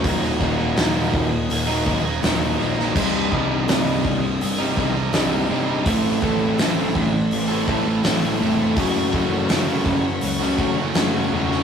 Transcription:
Already playing: string section F#5
0.03 picked electric bass D#1, overdriven electric guitar D#2 A#2 D#3 F#3 A#3 D#4, string section A#4 D#5 D#6, kick, open hi-hat
0.40 picked electric bass D#1, distorted electric guitar D#2 A#2, overdriven electric guitar D#3 F#3 A#3 D#4, kick
0.58 overdriven electric guitar D#3 F#3 A#3 D#4
0.77 picked electric bass D#1, overdriven electric guitar D#2 A#2 D#3 F#3 A#3 D#4, snare, open hi-hat
0.95 overdriven electric guitar D#3 F#3 A#3 D#4
1.13 picked electric bass D#1, distorted electric guitar D#2 A#2 D#3, muted overdriven electric guitar stroke, kick
1.31 muted overdriven electric guitar stroke
1.49 picked electric bass D#1, distorted electric guitar D#2 A#2 D#3, open hi-hat
1.67 overdriven electric guitar D#3 F#3 A#3 D#4
1.86 picked electric bass D#1, distorted electric guitar D#2 A#2, overdriven electric guitar D#3 F#3 A#3 D#4, kick
2.04 overdriven electric guitar A#3 D#4, muted overdriven electric guitar stroke
2.08 overdriven electric guitar D#3 F#3
2.23 picked electric bass D#1, overdriven electric guitar D#2 A#2 D#3 F#3 A#3, snare, open hi-hat
2.27 overdriven electric guitar D#4
2.42 overdriven electric guitar D#3 F#3 A#3 D#4
2.59 picked electric bass A#1, distorted electric guitar D#2 A#2, overdriven electric guitar D#3 F#3 A#3 D#4
2.78 overdriven electric guitar D#3 F#3 A#3 D#4, snare
2.96 picked electric bass C1, overdriven electric guitar C2 G2 C3 G3 D#4, string section C5 G5 D#6, kick, crash
3.31 picked electric bass C1, distorted electric guitar C2, overdriven electric guitar G2 C3 G3 D#4, kick
3.50 overdriven electric guitar C3 G3 D#4
3.68 picked electric bass C1, overdriven electric guitar C2 G2 C3 G3 D#4, snare, open hi-hat
3.86 overdriven electric guitar C3 G3 D#4
4.03 picked electric bass C1, distorted electric guitar C2 G2 C3, muted overdriven electric guitar stroke, kick
4.23 muted overdriven electric guitar stroke
4.40 picked electric bass G1, distorted electric guitar C2 G2 C3, open hi-hat
4.59 overdriven electric guitar C3 G3 D#4
4.76 picked electric bass C1, distorted electric guitar C2, overdriven electric guitar G2 C3 G3 D#4, kick
4.94 overdriven electric guitar C3 G3 D#4, muted overdriven electric guitar stroke
5.13 picked electric bass C1, overdriven electric guitar C2 G2 C3 G3 D#4, snare, open hi-hat
5.31 overdriven electric guitar C3 G3 D#4
5.49 picked electric bass G1, distorted electric guitar C2, overdriven electric guitar G2 C3 G3 D#4
5.67 overdriven electric guitar C3 G3 D#4
5.85 picked electric bass A1, overdriven electric guitar A2 E3 A3 C4 E4 A4, string section A4 E5 C6, kick, open hi-hat
6.21 picked electric bass A1, distorted electric guitar A2 E3, overdriven electric guitar A3 C4 E4 A4, kick
6.41 overdriven electric guitar A3 C4 E4 A4
6.58 picked electric bass A1, overdriven electric guitar A2 E3 A3 C4 E4 A4, snare, open hi-hat
6.76 overdriven electric guitar A3 C4 E4 A4
6.95 picked electric bass A1, distorted electric guitar A2 E3 A3, muted overdriven electric guitar stroke, kick
7.13 muted overdriven electric guitar stroke
7.31 picked electric bass A1, distorted electric guitar A2 E3 A3, open hi-hat
7.48 overdriven electric guitar A3 C4 E4 A4
7.67 picked electric bass A1, distorted electric guitar A2 E3, overdriven electric guitar A3 C4 E4 A4, kick
7.85 overdriven electric guitar A3 C4 E4 A4, muted overdriven electric guitar stroke
8.03 picked electric bass A1, overdriven electric guitar A2 E3 A3 C4 E4 A4, snare, open hi-hat
8.22 overdriven electric guitar A3 C4 E4 A4
8.39 picked electric bass F1, distorted electric guitar A2 E3, overdriven electric guitar A3 C4 E4 A4
8.58 overdriven electric guitar A3 C4 E4 A4
8.76 picked electric bass F#1, overdriven electric guitar F#2 C#3 F#3 A3 C#4 F#4, string section C#5 F#5 C#6, kick, open hi-hat
9.13 picked electric bass F#1, distorted electric guitar F#2 C#3, overdriven electric guitar F#3 A3 C#4 F#4, kick
9.31 overdriven electric guitar F#3 A3 C#4 F#4
9.49 picked electric bass F#1, overdriven electric guitar F#2 C#3 F#3 A3 C#4 F#4, snare, open hi-hat
9.68 overdriven electric guitar F#3 A3 C#4 F#4
9.86 picked electric bass F#1, distorted electric guitar F#2 C#3 F#3, muted overdriven electric guitar stroke, kick
10.04 muted overdriven electric guitar stroke
10.21 picked electric bass C#2, distorted electric guitar F#2 C#3 F#3, open hi-hat
10.39 overdriven electric guitar F#3 A3 C#4 F#4
10.57 picked electric bass F#1, distorted electric guitar F#2 C#3, overdriven electric guitar F#3 A3 C#4 F#4, kick
10.77 overdriven electric guitar F#3 A3 C#4 F#4, muted overdriven electric guitar stroke
10.94 picked electric bass F#1, overdriven electric guitar F#2 C#3 F#3 A3 C#4 F#4, snare, open hi-hat
11.13 overdriven electric guitar F#3 A3 C#4 F#4
11.31 picked electric bass E1, distorted electric guitar F#2 C#3, overdriven electric guitar F#3 A3 C#4
11.35 overdriven electric guitar F#4
11.51 overdriven electric guitar F#3 A3 C#4 F#4, snare

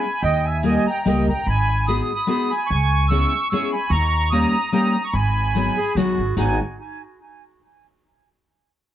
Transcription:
Already playing: accordion G#5 B5
0.22 upright bass D#2, accordion D#5 G5
0.45 accordion E5 G#5
0.63 steel-string acoustic guitar G3 A#3 D#4 G4 A#4, accordion D#5 G#5
0.87 accordion G5 A#5
1.04 upright bass C#2, steel-string acoustic guitar G3 A#3 D#4 G4 A#4, accordion D#5 G5
1.27 upright bass A#1, accordion G5 A#5
1.47 upright bass G#1, accordion G#5 B5
1.87 steel-string acoustic guitar G#3 B3 D#4 F#4 G#4, accordion B5 D#6
2.01 accordion D#6
2.14 accordion B5 D#6
2.27 steel-string acoustic guitar G#3 B3 D#4 F#4 G#4, accordion B5 D#6
2.50 accordion G#5 B5
2.66 accordion G#5 C#6
2.70 upright bass C#2
3.09 steel-string acoustic guitar G#3 B3 C#4 E4 G#4, accordion C#6 E6
3.50 steel-string acoustic guitar G#3 B3 C#4 E4 G#4, accordion C#6 E6
3.72 accordion G#5 B5
3.90 upright bass D#2, accordion A#5 C#6
4.31 steel-string acoustic guitar G3 A#3 C#4 D#4 G4, accordion A#5 D#6
4.72 steel-string acoustic guitar G3 A#3 C#4 D#4 G4, accordion A#5 D#6
5.04 accordion A#5 C#6
5.13 upright bass G#1, accordion G#5 B5
5.55 steel-string acoustic guitar F#3 G#3 B3 D#4 F#4
5.77 clarinet G#4
5.95 upright bass A#1, steel-string acoustic guitar F#3 G#3 B3 D#4 F#4, clarinet F#4
6.18 upright bass G#1
6.37 upright bass G#1, steel-string acoustic guitar G#3 B3 D#4 F#4, clarinet D#4, accordion G#5

